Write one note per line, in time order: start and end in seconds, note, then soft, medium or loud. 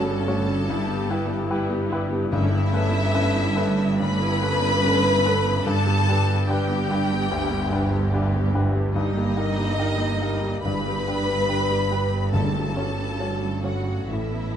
0.00 2.27 G1 medium
0.00 0.69 G2 medium
0.00 2.28 G2 medium
0.00 0.27 C#4 medium
0.00 0.28 F#4 medium
0.00 1.92 A4 medium
0.00 0.28 C#5 medium
0.00 1.91 A5 loud
0.06 0.27 C#4 medium
0.06 0.27 A4 medium
0.26 0.47 A3 medium
0.26 0.64 C#4 medium
0.26 0.47 F#4 medium
0.26 0.65 F#4 medium
0.26 0.65 C#5 medium
0.46 0.68 C#4 medium
0.46 0.67 A4 medium
0.66 1.08 G2 medium
0.66 0.86 G3 medium
0.66 0.86 E4 medium
0.87 1.08 B3 medium
0.87 1.09 G4 medium
1.08 1.29 G3 medium
1.08 1.29 E4 medium
1.08 1.47 E4 medium
1.08 1.47 G4 medium
1.08 1.47 B4 medium
1.28 1.49 B3 medium
1.28 1.49 G4 medium
1.48 1.68 G3 medium
1.48 1.68 E4 medium
1.48 1.87 E4 medium
1.48 1.87 G4 medium
1.48 1.87 B4 medium
1.69 1.90 B3 medium
1.69 1.90 G4 medium
1.90 2.11 G3 medium
1.90 2.11 E4 medium
1.90 2.28 E4 medium
1.90 2.28 G4 medium
1.90 2.28 B4 medium
2.11 2.31 B3 medium
2.11 2.31 G4 medium
2.31 5.62 G1 medium
2.31 5.62 G2 medium
2.31 3.52 G2 medium
2.31 2.71 G2 medium
2.31 2.50 A3 medium
2.31 2.50 C#4 medium
2.31 3.96 E4 medium
2.31 3.96 E5 loud
2.50 2.71 B3 medium
2.50 2.71 E4 medium
2.71 2.92 A3 medium
2.71 2.92 C#4 medium
2.71 3.09 C#4 medium
2.71 3.10 A4 medium
2.71 3.10 B4 medium
2.91 3.12 B3 medium
2.91 3.12 E4 medium
3.12 3.32 A3 medium
3.12 3.32 C#4 medium
3.12 3.53 C#4 medium
3.12 3.53 A4 medium
3.12 3.53 B4 medium
3.34 3.56 B3 medium
3.34 3.56 E4 medium
3.56 3.78 A3 medium
3.56 3.96 C#4 medium
3.56 3.78 C#4 medium
3.56 3.96 A4 medium
3.56 3.96 B4 medium
3.79 4.00 B3 medium
3.79 4.00 E4 medium
4.00 4.41 G2 medium
4.00 4.20 A3 medium
4.00 4.20 C#4 medium
4.00 5.66 B4 loud
4.00 5.66 B5 loud
4.22 4.42 B3 medium
4.22 4.42 E4 medium
4.42 4.63 A3 medium
4.42 4.80 C#4 medium
4.42 4.63 C#4 medium
4.42 4.80 A4 medium
4.42 4.80 B4 medium
4.63 4.84 B3 medium
4.63 4.84 E4 medium
4.83 5.03 A3 medium
4.83 5.20 C#4 medium
4.83 5.03 C#4 medium
4.83 5.21 A4 medium
4.83 5.21 B4 medium
5.04 5.25 B3 medium
5.04 5.25 E4 medium
5.25 5.46 A3 medium
5.25 5.62 C#4 medium
5.25 5.46 C#4 medium
5.25 5.63 A4 medium
5.25 5.63 B4 medium
5.46 5.66 B3 medium
5.46 5.66 E4 medium
5.66 10.60 G1 medium
5.66 10.60 G2 medium
5.66 6.06 G2 medium
5.66 5.85 G3 medium
5.66 5.86 D4 medium
5.66 6.49 A4 loud
5.66 6.49 A5 loud
5.87 6.08 B3 medium
5.87 6.07 G4 medium
6.08 6.28 G3 medium
6.08 6.28 D4 medium
6.08 6.45 D4 medium
6.08 6.45 G4 medium
6.08 6.45 B4 medium
6.29 6.49 B3 medium
6.29 6.49 G4 medium
6.48 6.68 G3 medium
6.48 6.68 D4 medium
6.48 6.86 D4 medium
6.48 8.49 G4 medium
6.48 6.86 G4 medium
6.48 6.86 B4 medium
6.48 8.53 G5 loud
6.70 6.90 B3 medium
6.70 6.90 G4 medium
6.90 7.10 G3 medium
6.90 7.10 D4 medium
6.90 7.27 D4 medium
6.90 7.27 G4 medium
6.90 7.27 B4 medium
7.11 7.31 B3 medium
7.11 7.31 G4 medium
7.31 7.71 D2 medium
7.31 7.50 G3 medium
7.31 7.50 D4 medium
7.51 7.72 B3 medium
7.51 7.72 G4 medium
7.71 7.92 G3 medium
7.71 7.92 D4 medium
7.71 8.09 D4 medium
7.71 8.09 G4 medium
7.71 8.09 B4 medium
7.92 8.13 B3 medium
7.92 8.12 G4 medium
8.12 8.31 G3 medium
8.12 8.31 D4 medium
8.12 8.50 D4 medium
8.12 8.50 G4 medium
8.12 8.50 B4 medium
8.33 8.53 B3 medium
8.33 8.53 G4 medium
8.54 8.74 G3 medium
8.54 8.74 D4 medium
8.54 8.91 D4 medium
8.54 8.91 G4 medium
8.54 8.91 B4 medium
8.74 8.95 B3 medium
8.74 8.95 G4 medium
8.94 9.35 G2 medium
8.94 9.14 G3 medium
8.94 10.60 D#4 medium
8.94 9.14 D#4 medium
8.94 10.60 D#5 loud
9.15 9.36 A#3 medium
9.15 9.36 G4 medium
9.37 9.57 G3 medium
9.37 9.57 D#4 medium
9.37 9.74 D#4 medium
9.37 9.74 G4 medium
9.37 9.74 A#4 medium
9.57 9.78 A#3 medium
9.57 9.78 G4 medium
9.78 9.97 G3 medium
9.78 9.97 D#4 medium
9.78 10.17 D#4 medium
9.78 10.17 G4 medium
9.78 10.17 A#4 medium
9.98 10.20 A#3 medium
9.98 10.20 G4 medium
10.20 10.42 G3 medium
10.20 10.42 D#4 medium
10.20 10.61 D#4 soft
10.20 10.61 G4 medium
10.20 10.61 A#4 medium
10.42 10.64 A#3 medium
10.42 10.64 G4 medium
10.64 14.05 G1 medium
10.64 14.05 G2 medium
10.64 11.87 G2 medium
10.64 11.06 G2 medium
10.64 10.84 G3 medium
10.64 10.84 D4 medium
10.64 12.33 B4 loud
10.64 12.33 B5 loud
10.86 11.07 B3 medium
10.86 11.07 G4 medium
11.08 11.28 G3 medium
11.08 11.28 D4 medium
11.08 11.45 D4 soft
11.08 11.45 G4 soft
11.08 11.46 B4 medium
11.29 11.49 B3 medium
11.29 11.49 G4 medium
11.49 11.69 G3 medium
11.49 11.87 D4 soft
11.49 11.69 D4 medium
11.49 11.87 G4 soft
11.49 11.87 B4 soft
11.70 11.91 B3 medium
11.70 11.91 G4 medium
11.91 12.12 G3 medium
11.91 12.29 D4 soft
11.91 12.12 D4 medium
11.91 12.29 G4 soft
11.91 12.29 B4 soft
12.12 12.33 B3 medium
12.12 12.33 G4 medium
12.33 12.74 G2 medium
12.33 13.60 G2 medium
12.33 12.52 A3 medium
12.33 12.53 C#4 medium
12.33 13.61 A4 medium
12.33 13.62 A5 loud
12.53 12.75 F#3 medium
12.53 12.73 A3 soft
12.75 12.95 A3 soft
12.75 12.97 C#4 soft
12.75 13.15 C#4 soft
12.75 13.16 F#4 soft
12.75 13.16 C#5 soft
12.97 13.19 F#3 soft
12.97 13.16 A3 medium
13.18 13.39 A3 soft
13.18 13.39 C#4 medium
13.18 13.60 C#4 soft
13.18 13.60 F#4 soft
13.18 13.60 C#5 soft
13.41 13.63 F#3 soft
13.41 13.62 A3 soft
13.63 13.85 A3 soft
13.63 13.86 C#4 soft
13.63 14.05 C#4 soft
13.63 14.09 F#4 medium
13.63 14.06 F#4 soft
13.63 14.06 C#5 soft
13.63 14.09 F#5 medium
13.86 14.09 F#3 soft
13.86 14.07 A3 soft
14.08 14.56 A1 medium
14.08 14.56 A2 medium
14.08 14.54 A2 medium
14.08 14.30 A3 soft
14.08 14.30 C#4 soft
14.08 14.56 E4 medium
14.08 14.56 E5 medium
14.31 14.55 B3 soft
14.31 14.55 E4 soft